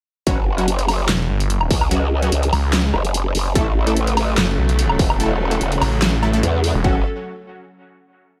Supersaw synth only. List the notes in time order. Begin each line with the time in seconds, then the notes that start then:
0.27 F#3 C#4 F#4
0.58 F#3 C#4 F#4
1.91 F#3 C#4 F#4
2.22 F#3 C#4 F#4
3.55 A3 E4 A4
3.87 A3 E4 A4
5.20 A3 E4 A4
5.51 A3 E4 A4
6.23 A3 E4 A4
6.33 A3 E4 A4
6.84 F#3 C#4 F#4